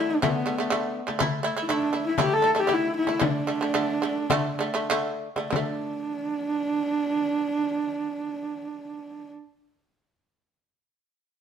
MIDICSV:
0, 0, Header, 1, 4, 480
1, 0, Start_track
1, 0, Tempo, 490998
1, 1175, Time_signature, 4, 2, 24, 8
1, 2629, Tempo, 540541
1, 4069, Tempo, 609137
1, 5029, Tempo, 647249
1, 9385, End_track
2, 0, Start_track
2, 0, Title_t, "Horsehead fiddle"
2, 0, Program_c, 0, 110
2, 0, Note_on_c, 0, 64, 100
2, 101, Note_on_c, 0, 62, 85
2, 115, Note_off_c, 0, 64, 0
2, 223, Note_off_c, 0, 62, 0
2, 236, Note_on_c, 0, 59, 74
2, 904, Note_off_c, 0, 59, 0
2, 1585, Note_on_c, 0, 64, 65
2, 1652, Note_on_c, 0, 62, 96
2, 1667, Note_off_c, 0, 64, 0
2, 2013, Note_off_c, 0, 62, 0
2, 2023, Note_on_c, 0, 64, 90
2, 2131, Note_off_c, 0, 64, 0
2, 2162, Note_on_c, 0, 67, 94
2, 2284, Note_on_c, 0, 69, 107
2, 2299, Note_off_c, 0, 67, 0
2, 2488, Note_off_c, 0, 69, 0
2, 2488, Note_on_c, 0, 69, 72
2, 2539, Note_on_c, 0, 67, 100
2, 2554, Note_off_c, 0, 69, 0
2, 2672, Note_on_c, 0, 64, 97
2, 2685, Note_off_c, 0, 67, 0
2, 2879, Note_off_c, 0, 64, 0
2, 2886, Note_on_c, 0, 64, 94
2, 3121, Note_on_c, 0, 62, 89
2, 3135, Note_off_c, 0, 64, 0
2, 4549, Note_off_c, 0, 62, 0
2, 5027, Note_on_c, 0, 62, 86
2, 7811, Note_off_c, 0, 62, 0
2, 9385, End_track
3, 0, Start_track
3, 0, Title_t, "Shamisen"
3, 0, Program_c, 1, 106
3, 0, Note_on_c, 1, 50, 72
3, 0, Note_on_c, 1, 57, 72
3, 174, Note_off_c, 1, 50, 0
3, 180, Note_off_c, 1, 57, 0
3, 218, Note_on_c, 1, 50, 96
3, 227, Note_on_c, 1, 57, 102
3, 412, Note_off_c, 1, 50, 0
3, 416, Note_off_c, 1, 57, 0
3, 447, Note_on_c, 1, 50, 68
3, 457, Note_on_c, 1, 57, 80
3, 550, Note_off_c, 1, 50, 0
3, 555, Note_off_c, 1, 57, 0
3, 571, Note_on_c, 1, 50, 76
3, 585, Note_on_c, 1, 57, 83
3, 672, Note_off_c, 1, 50, 0
3, 679, Note_off_c, 1, 57, 0
3, 688, Note_on_c, 1, 50, 105
3, 705, Note_on_c, 1, 57, 103
3, 979, Note_off_c, 1, 50, 0
3, 988, Note_off_c, 1, 57, 0
3, 1044, Note_on_c, 1, 50, 75
3, 1055, Note_on_c, 1, 57, 81
3, 1145, Note_off_c, 1, 50, 0
3, 1151, Note_off_c, 1, 57, 0
3, 1162, Note_on_c, 1, 57, 115
3, 1175, Note_on_c, 1, 64, 127
3, 1359, Note_off_c, 1, 57, 0
3, 1366, Note_off_c, 1, 64, 0
3, 1399, Note_on_c, 1, 57, 89
3, 1412, Note_on_c, 1, 64, 95
3, 1501, Note_off_c, 1, 57, 0
3, 1508, Note_off_c, 1, 64, 0
3, 1530, Note_on_c, 1, 57, 78
3, 1539, Note_on_c, 1, 64, 85
3, 1627, Note_off_c, 1, 57, 0
3, 1631, Note_off_c, 1, 64, 0
3, 1651, Note_on_c, 1, 57, 92
3, 1664, Note_on_c, 1, 64, 108
3, 1843, Note_off_c, 1, 57, 0
3, 1850, Note_off_c, 1, 64, 0
3, 1884, Note_on_c, 1, 57, 73
3, 1892, Note_on_c, 1, 64, 77
3, 2082, Note_off_c, 1, 57, 0
3, 2086, Note_off_c, 1, 64, 0
3, 2135, Note_on_c, 1, 57, 96
3, 2144, Note_on_c, 1, 64, 99
3, 2331, Note_off_c, 1, 57, 0
3, 2335, Note_off_c, 1, 64, 0
3, 2368, Note_on_c, 1, 57, 69
3, 2383, Note_on_c, 1, 64, 85
3, 2473, Note_off_c, 1, 57, 0
3, 2481, Note_off_c, 1, 64, 0
3, 2491, Note_on_c, 1, 57, 75
3, 2502, Note_on_c, 1, 64, 83
3, 2597, Note_off_c, 1, 57, 0
3, 2603, Note_off_c, 1, 64, 0
3, 2612, Note_on_c, 1, 57, 90
3, 2624, Note_on_c, 1, 64, 97
3, 2897, Note_off_c, 1, 57, 0
3, 2902, Note_off_c, 1, 64, 0
3, 2968, Note_on_c, 1, 57, 65
3, 2982, Note_on_c, 1, 64, 72
3, 3064, Note_off_c, 1, 57, 0
3, 3071, Note_off_c, 1, 64, 0
3, 3078, Note_on_c, 1, 50, 92
3, 3086, Note_on_c, 1, 57, 104
3, 3274, Note_off_c, 1, 50, 0
3, 3278, Note_off_c, 1, 57, 0
3, 3324, Note_on_c, 1, 50, 73
3, 3334, Note_on_c, 1, 57, 76
3, 3422, Note_off_c, 1, 50, 0
3, 3427, Note_off_c, 1, 57, 0
3, 3446, Note_on_c, 1, 50, 73
3, 3460, Note_on_c, 1, 57, 78
3, 3544, Note_off_c, 1, 50, 0
3, 3551, Note_off_c, 1, 57, 0
3, 3561, Note_on_c, 1, 50, 92
3, 3570, Note_on_c, 1, 57, 101
3, 3762, Note_off_c, 1, 50, 0
3, 3767, Note_off_c, 1, 57, 0
3, 3810, Note_on_c, 1, 50, 76
3, 3821, Note_on_c, 1, 57, 88
3, 4015, Note_off_c, 1, 50, 0
3, 4021, Note_off_c, 1, 57, 0
3, 4064, Note_on_c, 1, 50, 120
3, 4075, Note_on_c, 1, 57, 127
3, 4250, Note_off_c, 1, 50, 0
3, 4255, Note_off_c, 1, 57, 0
3, 4288, Note_on_c, 1, 50, 84
3, 4301, Note_on_c, 1, 57, 99
3, 4387, Note_off_c, 1, 50, 0
3, 4394, Note_off_c, 1, 57, 0
3, 4405, Note_on_c, 1, 50, 82
3, 4412, Note_on_c, 1, 57, 96
3, 4506, Note_off_c, 1, 50, 0
3, 4509, Note_off_c, 1, 57, 0
3, 4532, Note_on_c, 1, 50, 107
3, 4540, Note_on_c, 1, 57, 124
3, 4826, Note_off_c, 1, 50, 0
3, 4831, Note_off_c, 1, 57, 0
3, 4897, Note_on_c, 1, 50, 75
3, 4909, Note_on_c, 1, 57, 83
3, 5001, Note_off_c, 1, 50, 0
3, 5007, Note_off_c, 1, 57, 0
3, 5010, Note_on_c, 1, 50, 79
3, 5050, Note_on_c, 1, 57, 88
3, 7795, Note_off_c, 1, 50, 0
3, 7834, Note_off_c, 1, 57, 0
3, 9385, End_track
4, 0, Start_track
4, 0, Title_t, "Frame drum"
4, 223, Note_on_c, 9, 64, 85
4, 321, Note_off_c, 9, 64, 0
4, 587, Note_on_c, 9, 64, 25
4, 684, Note_off_c, 9, 64, 0
4, 706, Note_on_c, 9, 64, 53
4, 803, Note_off_c, 9, 64, 0
4, 1062, Note_on_c, 9, 64, 52
4, 1159, Note_off_c, 9, 64, 0
4, 1179, Note_on_c, 9, 64, 78
4, 1277, Note_off_c, 9, 64, 0
4, 1658, Note_on_c, 9, 64, 59
4, 1755, Note_off_c, 9, 64, 0
4, 1777, Note_on_c, 9, 64, 24
4, 1874, Note_off_c, 9, 64, 0
4, 1890, Note_on_c, 9, 64, 22
4, 1988, Note_off_c, 9, 64, 0
4, 2128, Note_on_c, 9, 64, 85
4, 2226, Note_off_c, 9, 64, 0
4, 2503, Note_on_c, 9, 64, 27
4, 2601, Note_off_c, 9, 64, 0
4, 2629, Note_on_c, 9, 64, 56
4, 2718, Note_off_c, 9, 64, 0
4, 2967, Note_on_c, 9, 64, 58
4, 3056, Note_off_c, 9, 64, 0
4, 3094, Note_on_c, 9, 64, 86
4, 3183, Note_off_c, 9, 64, 0
4, 3570, Note_on_c, 9, 64, 60
4, 3659, Note_off_c, 9, 64, 0
4, 3814, Note_on_c, 9, 64, 24
4, 3903, Note_off_c, 9, 64, 0
4, 4057, Note_on_c, 9, 64, 78
4, 4138, Note_off_c, 9, 64, 0
4, 4414, Note_on_c, 9, 64, 24
4, 4493, Note_off_c, 9, 64, 0
4, 4539, Note_on_c, 9, 64, 57
4, 4617, Note_off_c, 9, 64, 0
4, 4895, Note_on_c, 9, 64, 48
4, 4974, Note_off_c, 9, 64, 0
4, 5025, Note_on_c, 9, 64, 85
4, 5100, Note_off_c, 9, 64, 0
4, 9385, End_track
0, 0, End_of_file